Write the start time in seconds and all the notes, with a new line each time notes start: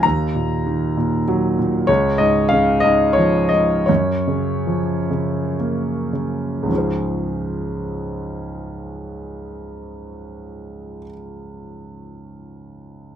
0.03 D#2 A#5
0.35 A#2
0.67 D#3
0.97 A#2
1.28 F#3
1.59 A#2
1.87 C#2 C#5
2.18 G#2 D#5
2.49 C#3 F5
2.80 G#2 D#5
3.13 C#5
3.18 F3
3.49 G#2 D#5
3.86 F#2 C#5
4.27 C#3
4.67 F3
5.11 C#3
5.60 A#3
6.13 C#3
6.63 C#2 G#2
6.69 F3 C#4
6.75 G#4 C5